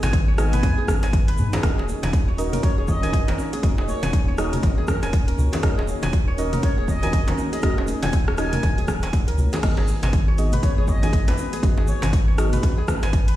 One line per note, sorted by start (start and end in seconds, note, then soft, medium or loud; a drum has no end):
0.00 0.65 G#1 loud
0.00 1.59 G#3 medium
0.00 0.36 B3 medium
0.00 1.59 B3 medium
0.00 0.36 D#4 medium
0.00 9.59 D#4 medium
0.00 0.36 F#4 medium
0.00 0.36 G#4 medium
0.00 0.77 G#4 medium
0.00 1.59 G#4 medium
0.00 0.51 B4 medium
0.00 1.59 B4 medium
0.00 0.36 D#5 medium
0.00 0.13 G#5 medium
0.00 0.93 G#5 loud
0.00 closed hi-hat soft
0.00 mid tom medium
0.00 djembe slap loud
0.00 low conga medium
0.00 shaker medium
0.13 kick loud
0.13 closed hi-hat medium
0.13 shaker soft
0.28 1.43 C#5 medium
0.28 muted conga soft
0.38 1.61 B3 loud
0.38 1.61 D#4 medium
0.38 1.61 F#4 medium
0.38 1.61 G#4 medium
0.38 1.61 D#5 loud
0.38 1.09 G#5 loud
0.38 cross-stick medium
0.38 closed hi-hat soft
0.38 shaker loud
0.53 1.28 B4 medium
0.53 closed hi-hat soft
0.53 mid tom medium
0.53 high conga medium
0.53 shaker medium
0.63 0.73 D#2 medium
0.63 kick loud
0.63 closed hi-hat medium
0.63 djembe tone medium
0.63 low conga loud
0.63 shaker soft
0.78 1.53 G#4 medium
0.78 muted conga soft
0.88 1.40 G#1 loud
0.88 kick medium
0.88 cross-stick medium
0.88 high conga loud
0.88 djembe tone medium
0.88 low conga medium
0.88 shaker loud
1.03 1.93 G#5 loud
1.03 closed hi-hat soft
1.03 djembe slap loud
1.03 shaker medium
1.13 kick loud
1.13 closed hi-hat medium
1.13 muted conga soft
1.13 shaker soft
1.28 2.51 B4 medium
1.28 closed hi-hat soft
1.37 1.48 G#2 medium
1.37 mid tom medium
1.37 high conga medium
1.37 shaker loud
1.53 1.78 G#4 medium
1.53 closed hi-hat soft
1.53 djembe slap loud
1.53 muted conga medium
1.53 low conga loud
1.53 shaker medium
1.63 1.73 D#1 loud
1.63 9.59 A#3 medium
1.63 2.36 C#4 medium
1.63 9.59 C#4 medium
1.63 2.36 D#4 medium
1.63 2.36 F#4 medium
1.63 13.36 F#4 medium
1.63 2.36 A#4 medium
1.63 9.59 C#5 medium
1.63 2.36 D#5 medium
1.63 kick loud
1.63 cross-stick medium
1.63 closed hi-hat medium
1.63 high conga loud
1.63 shaker soft
1.78 1.93 D#1 loud
1.78 2.78 G#4 medium
1.78 djembe slap medium
1.89 muted conga medium
1.89 shaker medium
2.03 2.58 D#1 loud
2.03 2.93 G#5 loud
2.03 closed hi-hat soft
2.03 mid tom medium
2.03 djembe slap medium
2.03 low conga medium
2.03 shaker medium
2.13 kick loud
2.13 closed hi-hat medium
2.13 shaker soft
2.28 3.43 C#5 medium
2.28 muted conga soft
2.38 2.99 C#4 medium
2.38 2.99 D#4 medium
2.38 2.99 F#4 medium
2.38 2.99 A#4 medium
2.38 2.99 D#5 loud
2.38 closed hi-hat soft
2.38 shaker medium
2.53 3.27 A#4 medium
2.53 closed hi-hat soft
2.53 mid tom medium
2.53 high conga loud
2.53 shaker medium
2.63 2.73 C#5 medium
2.63 kick loud
2.63 closed hi-hat medium
2.63 djembe tone medium
2.63 shaker soft
2.78 3.33 D#1 loud
2.78 3.53 G#4 medium
2.78 2.85 C#5 medium
2.78 muted conga soft
2.88 3.28 D#5 loud
2.88 kick medium
2.88 high conga medium
2.88 low conga loud
2.88 shaker loud
3.03 3.61 C#4 medium
3.03 3.61 D#4 medium
3.03 3.61 F#4 medium
3.03 3.61 A#4 medium
3.03 3.93 G#5 loud
3.03 3.61 G#5 medium
3.03 closed hi-hat soft
3.03 djembe tone loud
3.03 low conga loud
3.03 shaker medium
3.13 kick loud
3.13 closed hi-hat medium
3.13 muted conga soft
3.13 shaker soft
3.28 4.52 A#4 medium
3.28 closed hi-hat soft
3.28 djembe slap loud
3.28 high conga medium
3.28 low conga medium
3.38 djembe tone medium
3.38 shaker loud
3.53 3.77 G#4 medium
3.53 closed hi-hat soft
3.53 muted conga medium
3.53 shaker soft
3.63 3.73 D#1 loud
3.63 4.36 C#4 medium
3.63 4.36 D#4 medium
3.63 4.36 F#4 medium
3.63 4.36 A#4 medium
3.63 4.36 D#5 medium
3.63 kick loud
3.63 closed hi-hat medium
3.63 high conga medium
3.63 djembe tone medium
3.63 shaker soft
3.78 3.93 D#1 medium
3.78 4.77 G#4 medium
3.78 djembe slap medium
3.88 4.03 C#5 medium
3.88 muted conga medium
3.88 shaker medium
4.03 4.58 D#1 loud
4.03 4.93 G#5 loud
4.03 closed hi-hat soft
4.03 mid tom medium
4.03 djembe slap loud
4.03 low conga medium
4.03 shaker medium
4.13 kick loud
4.13 closed hi-hat medium
4.13 shaker soft
4.28 5.43 C#5 medium
4.28 muted conga soft
4.38 5.61 C#4 loud
4.38 5.61 D#4 medium
4.38 5.61 F#4 medium
4.38 5.61 A#4 medium
4.38 5.61 D#5 loud
4.38 cross-stick medium
4.38 closed hi-hat soft
4.38 shaker medium
4.53 5.27 A#4 medium
4.53 closed hi-hat soft
4.53 mid tom medium
4.53 high conga medium
4.53 shaker medium
4.63 4.73 F#1 medium
4.63 kick loud
4.63 closed hi-hat medium
4.63 djembe tone medium
4.63 low conga loud
4.63 shaker soft
4.78 5.52 G#4 medium
4.78 muted conga medium
4.88 4.98 A#4 medium
4.88 kick medium
4.88 cross-stick medium
4.88 djembe tone medium
4.88 high conga medium
4.88 low conga medium
4.88 shaker medium
5.03 5.33 D#1 medium
5.03 5.10 A#4 medium
5.03 5.93 G#5 loud
5.03 closed hi-hat soft
5.03 djembe slap medium
5.03 shaker medium
5.13 kick loud
5.13 closed hi-hat medium
5.13 shaker soft
5.28 6.52 A#4 medium
5.28 closed hi-hat soft
5.38 5.48 C#2 medium
5.38 mid tom medium
5.38 high conga medium
5.38 shaker medium
5.52 5.77 G#4 medium
5.52 closed hi-hat soft
5.52 muted conga medium
5.52 djembe slap loud
5.52 low conga loud
5.52 shaker medium
5.63 5.73 D#1 loud
5.63 6.36 C#4 medium
5.63 6.36 D#4 medium
5.63 6.36 F#4 medium
5.63 6.36 A#4 medium
5.63 6.36 D#5 loud
5.63 kick loud
5.63 cross-stick medium
5.63 closed hi-hat medium
5.63 high conga medium
5.63 shaker soft
5.78 5.93 D#1 loud
5.78 6.77 G#4 medium
5.78 djembe slap medium
5.87 muted conga medium
5.87 shaker loud
6.02 6.58 D#1 loud
6.02 6.93 G#5 loud
6.02 closed hi-hat soft
6.02 mid tom medium
6.02 djembe slap loud
6.02 low conga medium
6.02 shaker soft
6.13 kick loud
6.13 closed hi-hat medium
6.13 shaker soft
6.28 7.42 C#5 medium
6.28 muted conga soft
6.38 6.99 C#4 medium
6.38 6.99 D#4 medium
6.38 6.99 F#4 medium
6.38 6.99 A#4 medium
6.38 6.99 D#5 loud
6.38 closed hi-hat soft
6.38 shaker medium
6.53 7.27 A#4 medium
6.53 closed hi-hat soft
6.53 mid tom medium
6.53 high conga medium
6.53 shaker medium
6.63 6.73 C#5 medium
6.63 kick loud
6.63 closed hi-hat medium
6.63 djembe tone medium
6.63 shaker soft
6.78 7.32 D#1 loud
6.78 7.52 G#4 medium
6.78 6.85 C#5 medium
6.78 muted conga medium
6.88 7.28 D#5 loud
6.88 kick medium
6.88 high conga medium
6.88 low conga medium
6.88 shaker loud
7.03 7.61 C#4 medium
7.03 7.61 D#4 medium
7.03 7.61 F#4 medium
7.03 7.61 A#4 medium
7.03 7.93 G#5 loud
7.03 7.61 G#5 medium
7.03 closed hi-hat soft
7.03 djembe tone medium
7.03 low conga loud
7.03 shaker soft
7.13 kick loud
7.13 closed hi-hat medium
7.13 muted conga soft
7.13 shaker soft
7.28 8.52 A#4 medium
7.28 closed hi-hat soft
7.28 djembe slap loud
7.28 high conga medium
7.28 low conga loud
7.38 djembe tone medium
7.38 shaker medium
7.53 7.77 G#4 medium
7.53 7.59 D#5 medium
7.53 closed hi-hat soft
7.53 muted conga medium
7.53 shaker medium
7.62 7.73 D#1 loud
7.62 8.36 C#4 medium
7.62 8.36 D#4 medium
7.62 8.36 F#4 medium
7.62 8.36 A#4 medium
7.62 7.73 D#5 medium
7.62 8.36 D#5 medium
7.62 kick loud
7.62 cross-stick medium
7.62 closed hi-hat medium
7.62 djembe tone medium
7.62 high conga loud
7.62 shaker soft
7.78 7.93 D#1 loud
7.78 8.78 G#4 medium
7.78 djembe slap medium
7.87 closed hi-hat soft
7.87 muted conga medium
7.87 shaker medium
8.03 8.58 D#1 loud
8.03 8.93 G#5 loud
8.03 8.13 G#5 medium
8.03 closed hi-hat soft
8.03 mid tom medium
8.03 djembe slap loud
8.03 low conga loud
8.03 shaker soft
8.12 kick loud
8.12 closed hi-hat medium
8.12 shaker soft
8.28 9.42 C#5 medium
8.28 cross-stick medium
8.28 muted conga soft
8.28 djembe tone medium
8.38 9.61 C#4 loud
8.38 9.61 D#4 medium
8.38 9.61 F#4 medium
8.38 9.61 A#4 medium
8.38 9.61 D#5 loud
8.38 9.09 G#5 loud
8.38 cross-stick medium
8.38 closed hi-hat soft
8.38 shaker medium
8.53 9.27 A#4 medium
8.53 closed hi-hat soft
8.53 mid tom medium
8.53 high conga medium
8.53 shaker soft
8.63 9.29 D#1 medium
8.63 kick loud
8.63 closed hi-hat medium
8.63 high conga medium
8.63 djembe tone medium
8.63 low conga loud
8.63 shaker soft
8.78 9.52 G#4 medium
8.78 closed hi-hat soft
8.78 muted conga medium
8.88 kick medium
8.88 cross-stick medium
8.88 high conga loud
8.88 djembe tone medium
8.88 low conga loud
8.88 shaker medium
9.02 9.93 G#5 loud
9.02 closed hi-hat soft
9.02 djembe slap loud
9.02 shaker medium
9.13 kick loud
9.13 closed hi-hat medium
9.13 muted conga soft
9.13 shaker soft
9.28 9.35 C#2 medium
9.28 10.59 A#4 medium
9.28 closed hi-hat medium
9.38 9.48 C#2 loud
9.38 mid tom medium
9.38 high conga medium
9.38 shaker medium
9.53 9.78 G#4 medium
9.53 closed hi-hat soft
9.53 muted conga medium
9.53 djembe slap loud
9.53 low conga loud
9.53 shaker soft
9.63 9.73 G#1 loud
9.63 13.36 G#3 medium
9.63 13.36 B3 medium
9.63 10.36 B3 medium
9.63 13.36 D#4 medium
9.63 10.36 D#4 medium
9.63 10.36 F#4 medium
9.63 10.36 G#4 medium
9.63 13.36 B4 medium
9.63 10.36 D#5 medium
9.63 kick loud
9.63 cross-stick medium
9.63 closed hi-hat medium
9.63 crash medium
9.63 high conga medium
9.63 shaker soft
9.77 9.93 G#1 loud
9.77 10.78 G#4 medium
9.77 djembe slap medium
9.88 muted conga medium
9.88 shaker loud
10.03 10.57 G#1 loud
10.03 10.93 G#5 loud
10.03 closed hi-hat soft
10.03 mid tom medium
10.03 djembe slap loud
10.03 low conga medium
10.03 shaker medium
10.13 kick loud
10.13 closed hi-hat medium
10.13 shaker soft
10.28 11.43 C#5 medium
10.28 muted conga soft
10.38 10.99 B3 medium
10.38 10.99 D#4 medium
10.38 10.99 F#4 medium
10.38 10.99 G#4 medium
10.38 10.99 D#5 loud
10.38 closed hi-hat soft
10.38 shaker medium
10.52 11.28 B4 medium
10.52 closed hi-hat soft
10.52 mid tom medium
10.52 high conga loud
10.52 shaker medium
10.63 10.73 C#5 medium
10.63 kick loud
10.63 closed hi-hat medium
10.63 djembe tone medium
10.63 shaker soft
10.78 11.32 G#1 loud
10.78 11.53 G#4 medium
10.78 10.84 C#5 medium
10.78 muted conga medium
10.88 11.28 D#5 loud
10.88 kick medium
10.88 high conga loud
10.88 low conga medium
10.88 shaker medium
11.03 11.61 B3 medium
11.03 11.61 D#4 medium
11.03 11.61 F#4 medium
11.03 11.61 G#4 medium
11.03 11.93 G#5 loud
11.03 11.61 G#5 medium
11.03 closed hi-hat soft
11.03 djembe tone medium
11.03 low conga loud
11.03 shaker medium
11.12 kick loud
11.12 closed hi-hat medium
11.12 muted conga soft
11.12 shaker soft
11.28 12.51 B4 medium
11.28 closed hi-hat medium
11.28 djembe slap loud
11.28 high conga medium
11.28 low conga loud
11.38 djembe tone medium
11.38 shaker loud
11.53 11.78 G#4 medium
11.53 closed hi-hat soft
11.53 muted conga medium
11.53 shaker medium
11.63 11.73 G#1 loud
11.63 12.36 B3 medium
11.63 12.36 D#4 medium
11.63 12.36 F#4 medium
11.63 12.36 G#4 medium
11.63 12.36 D#5 medium
11.63 kick loud
11.63 closed hi-hat medium
11.63 high conga loud
11.63 djembe tone medium
11.63 shaker soft
11.77 11.93 G#1 medium
11.77 12.78 G#4 medium
11.77 djembe slap medium
11.87 12.03 C#5 medium
11.87 muted conga medium
11.87 shaker loud
12.02 12.58 G#1 loud
12.02 12.93 G#5 loud
12.02 closed hi-hat soft
12.02 mid tom medium
12.02 djembe slap loud
12.02 low conga medium
12.02 shaker medium
12.13 kick loud
12.13 closed hi-hat medium
12.13 shaker soft
12.28 13.36 C#5 medium
12.28 muted conga soft
12.38 13.36 B3 loud
12.38 13.36 D#4 medium
12.38 13.36 F#4 medium
12.38 13.36 G#4 medium
12.38 13.36 D#5 loud
12.38 cross-stick medium
12.38 closed hi-hat soft
12.38 shaker medium
12.53 13.28 B4 medium
12.53 closed hi-hat soft
12.53 mid tom medium
12.53 high conga loud
12.53 shaker medium
12.63 12.73 B1 medium
12.63 kick loud
12.63 closed hi-hat medium
12.63 djembe tone medium
12.63 low conga loud
12.63 shaker soft
12.78 13.36 G#4 medium
12.78 muted conga medium
12.88 12.98 B4 medium
12.88 kick medium
12.88 cross-stick medium
12.88 high conga medium
12.88 djembe tone medium
12.88 low conga medium
12.88 shaker loud
13.03 13.33 G#1 medium
13.03 13.10 B4 medium
13.03 13.36 G#5 loud
13.03 closed hi-hat soft
13.03 djembe slap loud
13.03 shaker medium
13.13 kick loud
13.13 closed hi-hat medium
13.13 muted conga soft
13.13 shaker soft
13.28 13.36 B4 medium
13.28 closed hi-hat medium